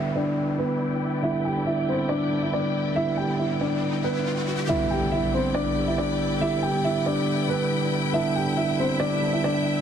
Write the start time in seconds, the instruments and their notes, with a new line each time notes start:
Already playing: tine electric piano D3 G3 B3 D4 E4 G4, grand piano E4 E5, string section E4 B4 D5 G5, downlifter
0.14 tine electric piano D3 G3 B3 D4, grand piano D4 D5
0.59 grand piano B3 B4
1.22 tine electric piano D3 G3 B3 E4, grand piano E4 E5, riser
1.45 grand piano G4 G5
1.55 tine electric piano D3 G3 B3 D4
1.66 grand piano E4 E5
1.87 tine electric piano D3 G3 B3 E4, grand piano C4 C5
2.09 grand piano D4 D5
2.30 tine electric piano D3 G3 B3 D4
2.42 grand piano E4 E5
2.53 grand piano D4 D5
2.95 tine electric piano D3 G3 B3 E4, grand piano E4 E5
3.17 grand piano G4 G5
3.27 tine electric piano D3 G3 B3 E4
3.39 grand piano E4 E5
3.59 tine electric piano D3 G3 B3 D4, grand piano D4 D5
4.04 grand piano B3 B4
4.67 tine electric piano D3 G3 B3 E4, string section E4 B4 D5 G5, grand piano E4 E5, impact
4.91 grand piano G4 G5
5.00 tine electric piano D3 G3 B3 E4
5.12 grand piano E4 E5
5.32 tine electric piano D3 G3 B3 D4, grand piano C4 C5
5.54 grand piano D4 D5
5.75 tine electric piano D3 G3 B3 G4
5.87 grand piano E4 E5
5.98 grand piano D4 D5
6.40 tine electric piano D3 G3 B3 G4, grand piano E4 E5
6.63 grand piano G4 G5
6.73 tine electric piano D3 G3 B3 D4
6.84 grand piano E4 E5
7.05 tine electric piano D3 G3 B3 G4, grand piano D4 D5
7.48 tine electric piano D3 G3 B3 D4, grand piano B3 B4
8.12 tine electric piano D3 G3 B3 D4, grand piano E4 E5, string section E5
8.36 grand piano G4 G5
8.46 tine electric piano D3 G3 B3 E4
8.57 grand piano E4 E5
8.78 tine electric piano D3 G3 B3 E4, grand piano C4 C5
9.00 grand piano D4 D5
9.21 tine electric piano D3 G3 B3 D4
9.33 grand piano E4 E5
9.44 grand piano D4 D5